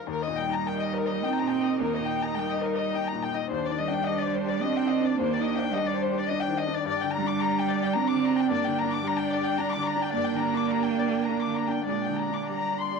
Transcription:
0.00 0.10 A#4 soft
0.00 0.10 D#5 soft
0.07 1.75 D#2 medium
0.07 3.47 D#4 medium
0.07 3.48 G4 medium
0.07 0.22 A#4 medium
0.07 3.48 A#4 medium
0.23 0.37 D#5 medium
0.28 0.58 A#2 soft
0.36 1.25 G3 medium
0.36 0.51 G5 medium
0.47 0.77 D#4 soft
0.51 0.65 A#5 medium
0.65 0.96 A#4 soft
0.65 0.79 G5 medium
0.79 0.94 D#5 medium
0.84 1.14 D#5 soft
0.95 1.08 A#4 medium
1.03 1.33 A#4 soft
1.09 1.22 D#5 medium
1.22 1.82 C4 medium
1.22 1.52 D#4 soft
1.22 1.37 G5 medium
1.36 1.50 A#5 medium
1.40 1.71 A#2 soft
1.51 1.65 G5 medium
1.60 1.90 D#4 soft
1.65 1.79 D#5 medium
1.79 3.47 D#2 medium
1.79 2.39 A#3 medium
1.79 1.93 A#4 medium
1.94 2.28 A#2 soft
1.94 2.08 D#5 medium
2.07 2.21 G5 medium
2.19 2.48 D#4 soft
2.19 2.36 A#5 medium
2.35 3.23 G3 medium
2.35 2.67 A#4 soft
2.35 2.50 G5 medium
2.49 2.64 D#5 medium
2.55 2.86 D#5 medium
2.64 2.79 A#4 medium
2.73 3.04 A#4 soft
2.77 2.92 D#5 medium
2.93 3.24 D#4 soft
2.93 3.08 G5 medium
3.06 3.21 A#5 medium
3.13 3.43 A#2 soft
3.22 3.36 G5 medium
3.33 3.51 D#4 soft
3.33 3.50 D#5 medium
3.50 5.15 D#2 medium
3.50 6.82 D4 medium
3.50 6.86 D4 medium
3.50 6.83 G4 medium
3.50 3.64 C5 medium
3.50 6.87 C5 medium
3.65 3.79 D5 medium
3.70 4.00 D#3 medium
3.78 4.63 G3 medium
3.78 3.93 D#5 medium
3.89 4.19 D4 soft
3.89 4.07 G5 medium
4.05 4.37 G4 medium
4.05 4.20 D#5 medium
4.20 4.34 D5 medium
4.25 4.55 C5 medium
4.34 4.49 C5 medium
4.45 4.74 G4 medium
4.45 4.62 D5 medium
4.62 5.17 C4 loud
4.62 4.94 D4 medium
4.62 4.76 D#5 medium
4.75 4.90 G5 medium
4.82 5.11 D#3 soft
4.89 5.04 D#5 medium
5.01 5.30 D4 medium
5.01 5.18 D5 medium
5.17 6.82 D#2 medium
5.17 5.74 A#3 loud
5.17 5.32 C5 medium
5.32 5.46 D5 medium
5.37 5.66 D#3 medium
5.45 5.59 D#5 medium
5.56 5.85 D4 medium
5.56 5.73 G5 medium
5.72 6.57 G3 medium
5.72 6.03 G4 medium
5.72 5.87 D#5 medium
5.88 6.01 D5 medium
5.94 6.22 C5 medium
6.02 6.16 C5 medium
6.11 6.41 G4 medium
6.16 6.29 D5 medium
6.29 6.60 D4 medium
6.29 6.43 D#5 medium
6.41 6.56 G5 medium
6.47 6.78 D#3 medium
6.59 6.72 D#5 medium
6.68 6.86 D4 medium
6.73 6.86 D5 medium
6.85 8.44 G2 medium
6.85 11.84 D4 medium
6.85 11.85 G4 medium
6.85 6.99 D5 medium
6.85 11.86 D5 medium
6.99 7.13 G5 medium
7.03 7.33 D3 medium
7.13 7.98 G3 loud
7.13 7.27 A#5 medium
7.22 7.51 D4 medium
7.27 7.41 D6 medium
7.41 7.70 G4 medium
7.41 7.55 A#5 medium
7.57 7.88 D5 medium
7.57 7.69 G5 medium
7.69 7.82 D5 medium
7.77 8.05 G4 medium
7.84 7.96 G5 medium
7.94 8.52 C4 loud
7.94 8.23 D4 medium
7.94 8.08 A#5 medium
8.09 8.22 D6 medium
8.14 8.42 D3 medium
8.24 8.36 A#5 medium
8.31 8.59 D4 medium
8.38 8.50 G5 medium
8.48 10.09 G2 medium
8.48 9.04 A#3 loud
8.48 8.62 D5 medium
8.63 8.76 G5 medium
8.67 8.96 D3 medium
8.77 8.90 A#5 medium
8.85 9.14 D4 medium
8.92 9.05 D6 medium
9.03 9.84 G3 medium
9.03 9.32 G4 medium
9.03 9.18 A#5 medium
9.18 9.51 D5 medium
9.18 9.31 G5 medium
9.31 9.44 D5 medium
9.40 9.69 G4 medium
9.44 9.58 G5 medium
9.58 9.87 D4 medium
9.58 9.71 A#5 medium
9.72 9.85 D6 medium
9.76 10.05 D3 medium
9.85 9.99 A#5 medium
9.96 10.25 D4 medium
10.00 10.13 G5 medium
10.13 11.84 G2 medium
10.13 11.83 A#3 loud
10.13 10.26 D5 medium
10.26 10.41 G5 medium
10.33 10.63 D3 medium
10.39 10.54 A#5 medium
10.53 10.82 D4 soft
10.53 10.69 D6 medium
10.69 11.01 G4 soft
10.69 10.84 A#5 medium
10.82 10.97 G5 medium
10.91 11.21 D5 soft
10.96 11.12 D5 medium
11.08 11.39 G4 soft
11.08 11.25 G5 medium
11.23 11.40 A#5 medium
11.29 11.60 D4 soft
11.39 11.55 D6 soft
11.46 11.79 D3 soft
11.55 11.71 A#5 soft
11.68 12.00 D4 soft
11.68 11.86 G5 soft
11.86 13.00 A#2 medium
11.86 12.50 G#3 medium
11.86 13.00 D4 soft
11.86 13.00 D4 medium
11.86 13.00 G4 soft
11.86 12.01 D5 medium
11.86 13.00 D5 soft
12.03 12.18 G5 soft
12.08 12.42 D3 soft
12.18 12.34 A#5 soft
12.29 12.62 D4 soft
12.34 12.50 D6 soft
12.48 13.00 G3 medium
12.48 12.83 G4 soft
12.48 12.78 A#5 medium
12.71 13.00 D5 soft
12.81 13.00 C6 soft
12.91 13.00 G4 soft

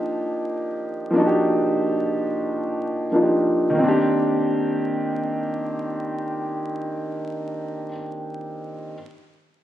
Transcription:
0.00 1.09 F3 medium
0.00 1.10 A#3 medium
0.00 1.11 D4 medium
0.00 1.12 D#4 medium
0.00 1.17 G4 medium
1.10 3.07 F3 medium
1.10 3.08 A#3 medium
1.15 3.09 D4 medium
1.15 3.10 D#4 medium
1.20 1.25 F#4 medium
1.26 3.15 G4 medium
3.11 3.78 F3 soft
3.11 3.73 A#3 soft
3.11 3.79 D4 soft
3.11 3.80 D#4 soft
3.16 3.22 F4 soft
3.22 3.84 G4 medium
3.70 7.84 D#3 medium
3.75 7.87 A#3 medium
3.79 7.89 C4 medium
3.84 7.91 D4 medium
3.89 7.94 G4 medium

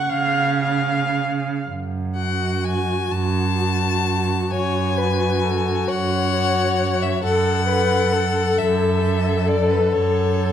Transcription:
0.00 0.90 F#5 medium
0.00 1.17 C#6 medium
0.08 1.51 C#3 medium
0.08 0.63 F5 medium
0.63 1.67 F5 medium
1.69 2.94 F#2 medium
2.16 3.55 F#4 medium
2.16 2.66 F#5 medium
2.64 3.13 G#5 medium
3.11 4.34 F#2 medium
3.11 4.52 A5 loud
3.58 4.94 F#4 soft
4.51 5.72 F#2 medium
4.51 4.99 C#5 medium
4.51 5.90 G#5 medium
4.97 6.31 F#4 medium
4.97 5.45 B4 medium
5.43 5.89 A4 medium
5.87 7.08 F#2 medium
5.87 7.23 C#5 medium
5.87 7.04 F#5 loud
6.34 7.22 F#4 medium
7.02 7.23 E5 medium
7.23 8.43 F#2 medium
7.23 7.66 A4 medium
7.23 7.68 A4 medium
7.23 8.59 F#5 loud
7.67 9.02 A4 medium
7.67 8.14 B4 medium
8.12 10.52 A4 medium
8.58 9.78 F#2 medium
8.58 9.50 E5 medium
9.04 10.37 A4 soft
9.48 9.72 D5 medium
9.70 9.94 B4 medium
9.92 10.52 F#2 medium
9.92 10.52 C#5 medium
10.40 10.52 A4 medium

